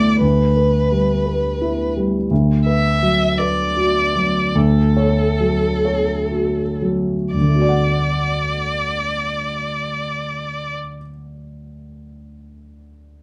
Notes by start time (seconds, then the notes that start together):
Already playing: D2 A3 E4 A4 D5
0.21 D2 B4
0.56 B4
0.92 G3
1.26 B4
1.62 E4
1.97 G3
2.31 D2
2.66 B4 E5
3.03 F#3
3.38 B4 D5
3.76 F#4
4.16 F#3
4.55 D2 A4
4.97 C#5
5.40 F#3
5.85 C#5
6.32 F#4
6.82 F#3
7.34 D2 D5
7.40 D3
7.48 A3
7.55 F#4
7.62 D5
7.69 F#5